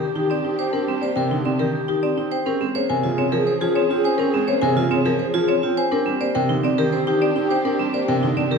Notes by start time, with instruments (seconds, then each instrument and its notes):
Already playing: violin section D4 G4, alto flute G4
0.16 grand piano D#3, vibraphone D#4, marimba G4
0.21 alto flute G4
0.30 vibraphone C4, marimba D5
0.45 grand piano C4, vibraphone D#4
0.51 alto flute G4
0.59 vibraphone C5, marimba G5
0.73 grand piano C4, vibraphone D4, marimba A#4
0.81 alto flute G4
0.87 grand piano G3, vibraphone C4
1.02 grand piano A#3, vibraphone C5, marimba D5
1.11 alto flute G4
1.16 grand piano C3, vibraphone A#4, marimba G5
1.31 grand piano D3, vibraphone D#4
1.41 grand piano C3, alto flute G4, marimba D5
1.45 vibraphone C4
1.59 grand piano D#3, vibraphone G4, marimba A#4
1.71 alto flute G4
1.88 grand piano D#3, vibraphone D#4, marimba G4
2.01 vibraphone C4, alto flute G4, marimba D5
2.17 grand piano C4, vibraphone D#4
2.32 vibraphone C5, marimba G5
2.45 grand piano C4, violin section C#4 G#4, vibraphone C#4, alto flute G#4, marimba A#4
2.61 grand piano G#3, vibraphone C4
2.75 grand piano A#3, alto flute G#4, vibraphone C5, marimba C#5
2.89 grand piano C3, vibraphone A#4, marimba G#5
3.03 grand piano C#3, vibraphone F4, alto flute G#4
3.18 grand piano C3, vibraphone C4, marimba C#5
3.32 grand piano F3, vibraphone G#4, marimba A#4
3.37 alto flute G#4
3.47 vibraphone C5
3.61 grand piano F3, vibraphone F4, marimba G#4
3.67 alto flute G#4
3.75 vibraphone C4, marimba C#5
3.90 grand piano C4, vibraphone F4
3.97 alto flute G#4
4.04 vibraphone C5, marimba G#5
4.18 grand piano C4, vibraphone C#4, marimba A#4
4.27 alto flute G#4
4.34 grand piano G#3, vibraphone C4
4.47 grand piano A#3, vibraphone C5, marimba C#5
4.57 alto flute G#4
4.62 grand piano C3, vibraphone A#4, marimba G#5
4.76 grand piano C#3, vibraphone F4
4.87 grand piano C3, vibraphone C4, alto flute G#4
4.92 marimba C#5
5.05 grand piano F3, vibraphone G#4, marimba A#4
5.17 alto flute G#4, vibraphone C5
5.34 grand piano F3, vibraphone F4, marimba G#4
5.47 vibraphone C4, alto flute G#4, marimba C#5
5.63 grand piano C4, vibraphone F4
5.77 vibraphone C5, marimba G#5
5.92 grand piano C4, vibraphone D4, violin section D4 G4, alto flute G4, marimba A#4
6.06 grand piano G3, vibraphone C4
6.21 grand piano A#3, alto flute G4, vibraphone C5, marimba D5
6.35 grand piano C3, vibraphone A#4, marimba G5
6.49 grand piano D3, vibraphone D#4, alto flute G4
6.64 grand piano C3, vibraphone C4, marimba D5
6.78 grand piano D#3, vibraphone G4, marimba A#4
6.82 alto flute G4
6.93 grand piano C4, vibraphone C5
7.07 grand piano D#3, vibraphone D#4, marimba G4
7.12 alto flute G4
7.21 vibraphone C4, marimba D5
7.36 grand piano C4, vibraphone D#4
7.43 alto flute G4
7.50 vibraphone C5, marimba G5
7.65 grand piano C4, vibraphone D4, marimba A#4
7.73 alto flute G4
7.79 grand piano G3, vibraphone C4
7.94 grand piano A#3, vibraphone C5, marimba D5
8.04 alto flute G4
8.08 grand piano C3, vibraphone A#4, marimba G5
8.23 grand piano D3, vibraphone D#4
8.33 grand piano C3, vibraphone C4, alto flute G4, marimba D5
8.51 grand piano D#3, vibraphone G4, marimba A#4